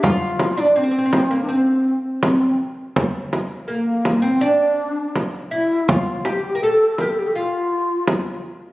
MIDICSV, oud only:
0, 0, Header, 1, 2, 480
1, 0, Start_track
1, 0, Tempo, 730816
1, 24, Time_signature, 4, 2, 24, 8
1, 5731, End_track
2, 0, Start_track
2, 0, Title_t, "Oud"
2, 0, Program_c, 0, 24
2, 20, Note_on_c, 0, 65, 98
2, 374, Note_off_c, 0, 65, 0
2, 377, Note_on_c, 0, 62, 83
2, 495, Note_off_c, 0, 62, 0
2, 497, Note_on_c, 0, 60, 86
2, 541, Note_off_c, 0, 60, 0
2, 548, Note_on_c, 0, 60, 62
2, 591, Note_off_c, 0, 60, 0
2, 599, Note_on_c, 0, 60, 70
2, 639, Note_off_c, 0, 60, 0
2, 647, Note_on_c, 0, 60, 63
2, 686, Note_off_c, 0, 60, 0
2, 694, Note_on_c, 0, 60, 71
2, 733, Note_off_c, 0, 60, 0
2, 741, Note_on_c, 0, 60, 55
2, 796, Note_off_c, 0, 60, 0
2, 858, Note_on_c, 0, 58, 77
2, 973, Note_off_c, 0, 58, 0
2, 976, Note_on_c, 0, 60, 72
2, 1672, Note_off_c, 0, 60, 0
2, 2416, Note_on_c, 0, 58, 75
2, 2771, Note_on_c, 0, 60, 77
2, 2789, Note_off_c, 0, 58, 0
2, 2895, Note_off_c, 0, 60, 0
2, 2897, Note_on_c, 0, 62, 93
2, 3353, Note_off_c, 0, 62, 0
2, 3620, Note_on_c, 0, 64, 75
2, 3862, Note_off_c, 0, 64, 0
2, 3865, Note_on_c, 0, 65, 88
2, 4101, Note_off_c, 0, 65, 0
2, 4104, Note_on_c, 0, 67, 90
2, 4299, Note_off_c, 0, 67, 0
2, 4301, Note_on_c, 0, 70, 74
2, 4345, Note_off_c, 0, 70, 0
2, 4356, Note_on_c, 0, 69, 98
2, 4596, Note_off_c, 0, 69, 0
2, 4600, Note_on_c, 0, 67, 76
2, 4828, Note_off_c, 0, 67, 0
2, 4831, Note_on_c, 0, 65, 73
2, 5522, Note_off_c, 0, 65, 0
2, 5731, End_track
0, 0, End_of_file